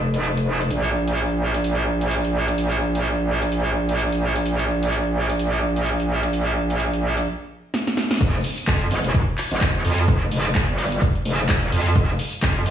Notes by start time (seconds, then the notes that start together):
Already playing: F1
0.14 closed hi-hat
0.24 closed hi-hat
0.37 closed hi-hat
0.61 closed hi-hat
0.71 A#1, closed hi-hat
0.84 closed hi-hat
1.08 closed hi-hat
1.17 closed hi-hat
1.54 closed hi-hat
1.64 closed hi-hat
2.01 closed hi-hat
2.11 closed hi-hat
2.25 closed hi-hat
2.48 closed hi-hat
2.58 closed hi-hat
2.72 closed hi-hat
2.95 closed hi-hat
3.05 closed hi-hat
3.42 closed hi-hat
3.52 closed hi-hat
3.89 closed hi-hat
3.99 closed hi-hat
4.12 closed hi-hat
4.36 closed hi-hat
4.46 closed hi-hat
4.59 closed hi-hat
4.83 closed hi-hat
4.93 closed hi-hat
5.30 closed hi-hat
5.39 closed hi-hat
5.76 closed hi-hat
5.86 closed hi-hat
6.00 closed hi-hat
6.23 closed hi-hat
6.33 closed hi-hat
6.47 closed hi-hat
6.70 closed hi-hat
6.80 closed hi-hat
6.94 closed hi-hat
7.17 closed hi-hat
7.74 snare
7.87 snare
7.97 snare
8.11 snare
8.21 F1, kick, closed hi-hat, crash, cabasa
8.34 closed hi-hat, cabasa
8.44 open hi-hat, cabasa
8.58 closed hi-hat, cabasa
8.68 F2, kick, clap, closed hi-hat, cabasa
8.81 cabasa
8.91 G#1, open hi-hat, cabasa
9.04 F1, closed hi-hat, cabasa
9.14 D#1, kick, closed hi-hat, cabasa
9.28 cabasa
9.38 clap, open hi-hat, cabasa
9.51 G#1, closed hi-hat, cabasa
9.61 kick, clap, closed hi-hat, cabasa
9.75 closed hi-hat, cabasa
9.85 F2, open hi-hat, cabasa
9.98 closed hi-hat, cabasa
10.08 F1, kick, closed hi-hat, cabasa
10.22 closed hi-hat, cabasa
10.32 F1, open hi-hat, cabasa
10.45 closed hi-hat, cabasa
10.55 kick, clap, closed hi-hat, cabasa
10.68 G1, cabasa
10.78 open hi-hat, cabasa
10.92 closed hi-hat, cabasa
11.02 kick, closed hi-hat, cabasa
11.16 closed hi-hat, cabasa
11.25 F1, open hi-hat, cabasa
11.39 closed hi-hat, cabasa
11.49 kick, clap, closed hi-hat, cabasa
11.62 G1, closed hi-hat, cabasa
11.72 F2, open hi-hat, cabasa
11.86 closed hi-hat, cabasa
11.96 F1, kick, closed hi-hat, cabasa
12.09 closed hi-hat, cabasa
12.19 open hi-hat, cabasa
12.33 closed hi-hat, cabasa
12.43 F2, kick, clap, closed hi-hat, cabasa
12.56 cabasa
12.66 G#1, open hi-hat, cabasa